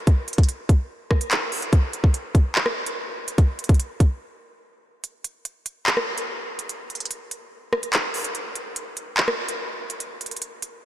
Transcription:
0.07 kick loud
0.07 closed hi-hat medium
0.28 closed hi-hat soft
0.33 closed hi-hat medium
0.38 kick loud
0.38 closed hi-hat medium
0.43 closed hi-hat medium
0.49 closed hi-hat loud
0.69 kick medium
0.69 closed hi-hat medium
1.11 kick loud
1.11 cross-stick loud
1.21 closed hi-hat medium
1.31 clap loud
1.31 closed hi-hat medium
1.52 open hi-hat medium
1.62 closed hi-hat medium
1.73 kick loud
1.73 closed hi-hat medium
1.93 closed hi-hat medium
2.04 kick loud
2.14 closed hi-hat medium
2.35 kick medium
2.35 closed hi-hat medium
2.55 clap loud
2.66 cross-stick medium
2.86 closed hi-hat medium
3.28 closed hi-hat medium
3.38 kick loud
3.38 closed hi-hat medium
3.59 closed hi-hat medium
3.64 closed hi-hat medium
3.69 kick loud
3.69 closed hi-hat medium
3.74 closed hi-hat medium
3.80 closed hi-hat medium
4.00 kick medium
4.00 closed hi-hat medium
5.04 closed hi-hat medium
5.24 closed hi-hat medium
5.45 closed hi-hat medium
5.66 closed hi-hat medium
5.87 clap loud
5.97 cross-stick medium
6.18 closed hi-hat medium
6.59 closed hi-hat medium
6.69 closed hi-hat medium
6.90 closed hi-hat soft
6.95 closed hi-hat medium
7.00 closed hi-hat medium
7.05 closed hi-hat medium
7.11 closed hi-hat medium
7.31 closed hi-hat medium
7.73 cross-stick loud
7.83 closed hi-hat medium
7.93 clap loud
7.93 closed hi-hat medium
8.14 open hi-hat medium
8.24 closed hi-hat medium
8.35 closed hi-hat medium
8.55 closed hi-hat medium
8.76 closed hi-hat medium
8.97 closed hi-hat medium
9.17 clap loud
9.28 cross-stick medium
9.49 closed hi-hat medium
9.90 closed hi-hat medium
10.00 closed hi-hat medium
10.21 closed hi-hat medium
10.26 closed hi-hat medium
10.31 closed hi-hat medium
10.37 closed hi-hat medium
10.42 closed hi-hat medium
10.62 closed hi-hat medium

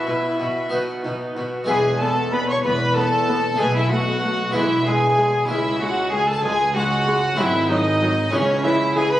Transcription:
0.00 0.68 B3 soft
0.00 0.68 E4 soft
0.00 0.70 E4 medium
0.00 1.18 B4 medium
0.00 0.70 E5 medium
0.07 0.36 B2 soft
0.07 0.15 B2 soft
0.07 0.40 E4 soft
0.39 0.48 B2 soft
0.39 0.69 B2 soft
0.39 0.70 F#4 soft
0.70 0.80 B2 soft
0.70 1.02 B2 soft
0.70 1.65 B3 soft
0.70 1.65 D#4 soft
0.70 1.02 F#4 soft
1.04 1.12 B2 medium
1.04 1.34 B2 soft
1.04 1.37 D#4 soft
1.37 1.45 B2 soft
1.37 1.66 B2 soft
1.37 1.69 F#4 soft
1.64 3.53 G#3 soft
1.64 3.54 B3 soft
1.64 3.55 E4 soft
1.64 1.98 G#4 medium
1.64 2.02 G#4 medium
1.69 2.53 E1 medium
1.69 2.53 E2 medium
1.69 2.51 E2 medium
1.69 1.77 B3 medium
1.69 1.99 G#5 medium
2.01 2.09 B3 medium
2.01 2.32 A4 medium
2.01 2.34 A4 medium
2.01 2.33 A5 medium
2.32 2.40 B3 medium
2.32 2.50 B4 medium
2.32 2.49 B4 medium
2.32 2.48 B5 medium
2.48 2.66 C#5 medium
2.48 2.65 C#5 medium
2.48 2.56 C#6 loud
2.64 3.48 E1 medium
2.64 3.48 E2 medium
2.64 3.46 E2 medium
2.64 2.73 B3 medium
2.64 2.98 B4 medium
2.64 2.96 B4 medium
2.64 2.96 B5 loud
2.96 3.04 B3 medium
2.96 3.60 A4 medium
2.96 3.60 A5 loud
3.28 3.36 B3 medium
3.55 4.49 A3 medium
3.55 4.50 B3 soft
3.55 4.51 D#4 soft
3.59 4.43 B1 medium
3.59 4.41 B2 medium
3.59 4.43 B2 medium
3.59 3.68 A3 medium
3.59 3.75 G#4 medium
3.59 3.75 G#5 loud
3.75 3.93 E4 medium
3.75 3.91 E4 medium
3.75 3.92 E5 medium
3.91 4.00 A3 medium
3.91 4.54 F#4 medium
3.91 4.56 F#4 medium
3.91 4.54 F#5 medium
4.24 4.32 A3 medium
4.50 5.44 G#3 medium
4.50 5.45 B3 medium
4.50 5.46 E4 medium
4.50 4.86 E4 medium
4.54 5.38 E1 medium
4.54 5.36 E2 medium
4.54 5.38 E2 medium
4.54 4.63 G#3 medium
4.54 4.86 E4 medium
4.54 4.86 E5 loud
4.86 4.95 G#3 medium
4.86 5.48 G#4 medium
4.86 5.51 G#4 medium
4.86 5.50 G#5 loud
5.18 5.26 G#3 medium
5.45 7.33 G#3 medium
5.45 7.33 C#4 medium
5.45 7.34 E4 medium
5.49 6.33 C#2 medium
5.49 6.31 C#2 medium
5.49 5.58 G#3 medium
5.49 5.81 E4 medium
5.49 5.80 E4 medium
5.49 5.81 E5 medium
5.80 5.89 G#3 medium
5.80 6.12 F#4 medium
5.80 6.13 F#5 medium
6.12 6.21 G#3 medium
6.12 6.28 G#4 medium
6.12 6.28 G#5 medium
6.28 6.44 A4 medium
6.28 6.43 A4 medium
6.28 6.45 A5 loud
6.44 7.25 C#2 medium
6.44 7.28 C#2 medium
6.44 6.52 G#3 medium
6.44 6.75 G#4 medium
6.44 6.58 G#4 medium
6.44 6.75 G#5 loud
6.75 6.84 G#3 medium
6.75 7.39 F#4 medium
6.75 7.38 F#5 loud
7.07 7.15 G#3 medium
7.35 8.28 G#3 medium
7.35 8.29 C4 medium
7.35 7.69 E4 medium
7.35 8.30 F#4 medium
7.39 8.23 G#1 medium
7.39 8.22 G#2 medium
7.39 8.20 G#2 medium
7.39 7.47 F#3 medium
7.39 7.70 E4 medium
7.39 7.71 E5 loud
7.69 7.78 F#3 medium
7.69 8.31 D#4 medium
7.69 8.10 D#4 medium
7.69 8.32 D#5 loud
8.02 8.10 F#3 medium
8.29 9.17 C#2 medium
8.29 8.41 E3 medium
8.29 9.20 G#3 medium
8.29 9.20 C#4 medium
8.29 8.65 C#4 medium
8.29 8.63 C#4 medium
8.29 9.20 E4 medium
8.29 8.65 C#5 loud
8.33 9.17 C#3 medium
8.33 9.15 C#3 medium
8.64 8.73 E3 medium
8.64 8.95 E4 medium
8.64 8.79 E4 medium
8.64 8.96 E5 loud
8.96 9.04 E3 medium
8.96 9.03 G#4 medium
8.96 9.12 G#4 medium
8.96 9.12 G#5 loud
9.11 9.20 B4 medium
9.11 9.20 B5 loud

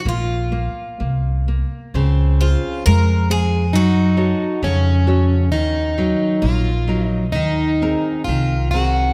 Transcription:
0.05 0.66 A#1 medium
0.05 0.51 A#3 medium
0.05 1.45 F4 medium
0.52 0.98 A#3 soft
1.00 1.61 C2 medium
1.00 1.46 A#3 soft
1.48 1.93 A#3 soft
1.94 2.54 C#2 medium
1.94 2.84 C#3 medium
1.94 3.80 C4 medium
2.41 2.85 F4 medium
2.41 3.13 G#4 soft
2.41 3.13 C5 soft
2.41 3.13 F5 medium
2.86 3.75 F2 medium
2.86 3.72 G#3 medium
2.86 3.31 A#4 loud
3.30 3.65 G#4 soft
3.30 3.75 G#4 medium
3.30 3.65 C5 soft
3.30 3.65 F5 soft
3.73 4.32 F#2 medium
3.73 4.60 F#3 medium
3.73 4.64 D#4 medium
3.73 5.04 F#4 medium
4.17 4.89 F#4 medium
4.17 4.89 A4 soft
4.17 4.89 C#5 medium
4.63 5.53 F2 medium
4.63 5.50 C#3 medium
4.63 5.51 C#4 medium
5.07 5.43 F#4 medium
5.07 5.43 A4 soft
5.07 5.44 C#5 medium
5.52 6.11 D#2 medium
5.52 6.40 D#3 medium
5.52 6.44 D#4 medium
5.98 6.69 F#3 soft
5.98 6.69 D#4 soft
5.98 6.70 A#4 medium
6.42 7.34 A#1 medium
6.42 7.30 A#3 medium
6.42 7.08 F4 medium
6.88 7.24 F#3 soft
6.88 7.24 D#4 soft
6.88 7.25 A#4 medium
7.08 7.32 D#4 medium
7.32 7.94 D#2 medium
7.32 8.24 D#3 medium
7.32 8.22 D#4 loud
7.82 8.55 C4 soft
7.82 8.56 G#4 soft
7.82 8.56 A#4 medium
8.24 9.13 C2 medium
8.24 8.71 F4 medium
8.28 9.13 D#3 medium
8.71 9.11 C4 soft
8.71 9.13 F#4 medium
8.71 9.11 G#4 soft
8.71 9.11 A#4 soft

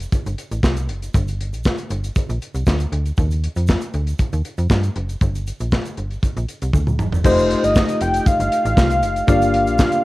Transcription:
0.00 closed hi-hat soft
0.00 shaker medium
0.12 kick loud
0.12 closed hi-hat medium
0.12 shaker medium
0.26 0.36 G1 medium
0.26 closed hi-hat soft
0.26 shaker soft
0.38 closed hi-hat medium
0.38 shaker soft
0.52 0.61 A1 medium
0.52 closed hi-hat soft
0.52 shaker medium
0.63 0.90 C2 medium
0.63 kick loud
0.63 snare loud
0.63 clap medium
0.63 shaker medium
0.77 closed hi-hat medium
0.77 shaker medium
0.89 1.09 F#1 medium
0.89 closed hi-hat medium
1.02 closed hi-hat soft
1.02 shaker soft
1.14 1.55 G1 loud
1.14 kick loud
1.14 closed hi-hat medium
1.14 shaker medium
1.28 closed hi-hat soft
1.28 shaker medium
1.41 closed hi-hat medium
1.53 1.73 A#1 medium
1.53 closed hi-hat medium
1.53 shaker soft
1.64 kick loud
1.64 snare loud
1.64 clap loud
1.64 shaker medium
1.77 closed hi-hat medium
1.77 shaker soft
1.90 2.10 G1 loud
1.90 closed hi-hat medium
1.90 shaker soft
2.04 closed hi-hat medium
2.04 shaker medium
2.15 kick loud
2.15 closed hi-hat medium
2.15 shaker medium
2.29 2.39 A#1 medium
2.29 closed hi-hat soft
2.29 shaker soft
2.42 closed hi-hat medium
2.42 shaker soft
2.54 2.64 C2 medium
2.54 closed hi-hat soft
2.54 shaker medium
2.66 2.87 D2 loud
2.66 kick loud
2.66 snare loud
2.66 clap medium
2.66 shaker medium
2.80 closed hi-hat medium
2.80 shaker medium
2.92 3.12 D2 medium
2.92 closed hi-hat medium
3.06 closed hi-hat soft
3.06 shaker soft
3.17 3.48 D#2 loud
3.17 kick loud
3.17 closed hi-hat medium
3.17 shaker medium
3.31 closed hi-hat soft
3.31 shaker medium
3.44 closed hi-hat medium
3.56 3.76 F2 medium
3.56 closed hi-hat medium
3.56 shaker soft
3.67 kick loud
3.67 snare loud
3.67 clap medium
3.67 shaker medium
3.81 closed hi-hat medium
3.81 shaker soft
3.94 4.14 D2 medium
3.94 closed hi-hat medium
3.94 shaker soft
4.07 closed hi-hat medium
4.07 shaker medium
4.19 kick loud
4.19 closed hi-hat medium
4.19 shaker medium
4.33 4.42 D#2 medium
4.33 closed hi-hat soft
4.33 shaker soft
4.45 closed hi-hat medium
4.45 shaker soft
4.58 4.68 F2 medium
4.58 closed hi-hat soft
4.58 shaker soft
4.70 4.90 G2 medium
4.70 kick loud
4.70 snare loud
4.70 clap medium
4.70 shaker medium
4.83 closed hi-hat soft
4.83 shaker medium
4.96 5.16 F#1 medium
4.96 closed hi-hat medium
5.09 closed hi-hat soft
5.09 shaker soft
5.21 5.52 G1 loud
5.21 kick loud
5.21 closed hi-hat medium
5.21 shaker medium
5.35 closed hi-hat soft
5.35 shaker medium
5.47 closed hi-hat medium
5.47 shaker medium
5.60 5.80 A#1 medium
5.60 closed hi-hat soft
5.60 shaker soft
5.72 kick loud
5.72 snare loud
5.72 clap medium
5.72 shaker medium
5.85 closed hi-hat medium
5.85 shaker soft
5.97 6.18 G1 medium
5.97 closed hi-hat medium
5.97 shaker soft
6.11 closed hi-hat soft
6.11 shaker medium
6.23 kick loud
6.23 closed hi-hat medium
6.23 shaker medium
6.37 6.46 A#1 medium
6.37 closed hi-hat soft
6.37 shaker soft
6.48 closed hi-hat medium
6.48 shaker soft
6.62 6.71 C2 medium
6.62 closed hi-hat soft
6.62 shaker medium
6.73 7.01 D2 medium
6.73 kick loud
6.73 high tom medium
6.73 shaker medium
6.87 mid tom medium
6.87 shaker medium
6.99 7.19 E1 medium
6.99 mid tom medium
6.99 shaker soft
7.12 floor tom medium
7.12 shaker soft
7.24 7.55 F1 loud
7.24 9.24 A3 medium
7.24 9.24 D#4 medium
7.24 9.24 F4 medium
7.24 9.24 G4 medium
7.24 7.65 C5 loud
7.24 9.25 D#5 medium
7.24 kick loud
7.24 crash loud
7.24 shaker medium
7.39 closed hi-hat soft
7.39 shaker medium
7.50 closed hi-hat medium
7.64 7.83 G1 medium
7.64 8.03 D#5 loud
7.64 closed hi-hat medium
7.64 shaker medium
7.75 kick loud
7.75 snare loud
7.75 clap loud
7.75 shaker medium
7.88 closed hi-hat medium
7.88 shaker medium
8.01 8.21 F1 loud
8.01 8.28 G5 loud
8.01 closed hi-hat medium
8.01 shaker medium
8.14 closed hi-hat medium
8.14 shaker medium
8.26 9.27 F5 loud
8.26 kick loud
8.26 closed hi-hat loud
8.26 shaker medium
8.40 8.49 G1 medium
8.40 closed hi-hat medium
8.40 shaker medium
8.52 closed hi-hat medium
8.52 shaker medium
8.65 8.74 A1 loud
8.65 closed hi-hat medium
8.65 shaker medium
8.77 9.03 C2 medium
8.77 kick loud
8.77 snare loud
8.77 clap loud
8.77 shaker medium
8.90 closed hi-hat medium
8.90 shaker medium
9.02 9.22 F#1 medium
9.02 closed hi-hat medium
9.02 shaker soft
9.16 closed hi-hat soft
9.16 shaker medium
9.27 9.68 G1 loud
9.27 10.04 A#3 medium
9.27 10.04 D4 medium
9.27 10.04 F4 medium
9.27 10.04 G4 medium
9.27 10.04 D5 medium
9.27 10.04 F5 loud
9.27 kick loud
9.27 closed hi-hat medium
9.27 shaker medium
9.42 closed hi-hat medium
9.42 shaker medium
9.54 closed hi-hat medium
9.67 9.87 A#1 medium
9.67 closed hi-hat medium
9.67 shaker soft
9.78 kick loud
9.78 snare loud
9.78 clap loud
9.78 shaker medium
9.92 closed hi-hat medium
9.92 shaker medium

